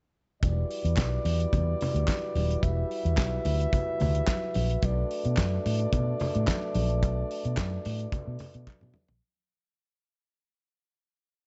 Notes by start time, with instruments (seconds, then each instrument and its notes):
0.42 fingered electric bass E1, french horn section G3 E4 F#4 B4 D5, kick, closed hi-hat, muted conga
0.71 open hi-hat
0.85 fingered electric bass E2, closed hi-hat
0.97 fingered electric bass B1, kick, snare, clap, closed hi-hat
0.99 clap, high conga
1.25 fingered electric bass E2, open hi-hat, muted conga
1.40 closed hi-hat
1.53 fingered electric bass E2, kick, closed hi-hat, low conga
1.81 open hi-hat, low conga
1.95 fingered electric bass D2, closed hi-hat
2.08 kick, snare, clap, closed hi-hat, high conga
2.35 fingered electric bass D#1, open hi-hat, high conga
2.51 closed hi-hat
2.63 fingered electric bass E1, french horn section E5, kick, closed hi-hat, muted conga
2.91 open hi-hat
3.05 fingered electric bass E2, closed hi-hat
3.17 fingered electric bass B1, kick, snare, clap, closed hi-hat, high conga
3.45 fingered electric bass D2, open hi-hat, muted conga
3.60 closed hi-hat
3.73 kick, closed hi-hat, muted conga, low conga
4.00 fingered electric bass D2, open hi-hat, low conga
4.15 closed hi-hat
4.27 kick, snare, clap, closed hi-hat, high conga
4.54 fingered electric bass A#1, open hi-hat, high conga
4.70 closed hi-hat
4.82 fingered electric bass B1, french horn section A3 D4 D5, kick, closed hi-hat, muted conga
5.11 open hi-hat
5.25 fingered electric bass B2, closed hi-hat
5.37 fingered electric bass F#2, kick, snare, clap, closed hi-hat, high conga
5.66 fingered electric bass A2, open hi-hat, muted conga
5.79 closed hi-hat
5.93 fingered electric bass B2, kick, closed hi-hat, low conga
6.20 open hi-hat, low conga
6.35 fingered electric bass A2, closed hi-hat
6.47 kick, snare, clap, closed hi-hat, high conga
6.75 fingered electric bass A#1, open hi-hat, high conga
6.90 closed hi-hat
7.03 fingered electric bass B1, kick, closed hi-hat, muted conga
7.31 open hi-hat
7.45 fingered electric bass B2, closed hi-hat
7.57 fingered electric bass F#2, kick, snare, clap, closed hi-hat, high conga
7.85 fingered electric bass A2, open hi-hat, muted conga
7.99 closed hi-hat
8.12 kick, closed hi-hat, muted conga, low conga
8.27 fingered electric bass B2
8.39 open hi-hat, low conga
8.54 fingered electric bass B2, closed hi-hat
8.67 kick, clap, high tom, high conga
8.81 fingered electric bass B2, mid tom, high conga
8.94 mid tom, high conga
9.09 fingered electric bass A#1, floor tom